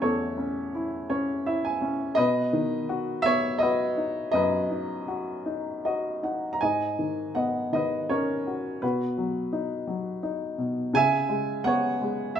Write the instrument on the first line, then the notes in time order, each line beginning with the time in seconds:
upright piano
Already playing: C#4 E4 C#5 D#5 E5 F#5
0.02 E2 A4 C#5
0.38 C#4
0.75 E4
1.10 C#4 C#5
1.46 E4 E5
1.65 G#5
1.82 C#4
2.15 B2 B4 D#5
2.53 D#3
2.89 F#4
3.22 B3 C#5 E5
3.58 F#4 B4 D#5
3.97 D#4
4.32 F#2 B4 D#5
4.70 D#4
5.08 F#4
5.46 D#4
5.85 F#4 D#5
6.23 D#4 F#5
6.53 A#5
6.61 G#2 D#5 G#5
6.99 D#3
7.35 B3 D#5 F#5
7.72 D#3 B4 D#5
8.09 C#4 A#4 C#5
8.47 F#4
8.82 B2 F#4 B4
9.18 F#3
9.53 D#4
9.87 F#3
10.23 D#4
10.58 B2
10.94 C#3 E5 G#5
11.29 G#3
11.64 B3 C#5 F#5
12.02 G#3
12.35 E5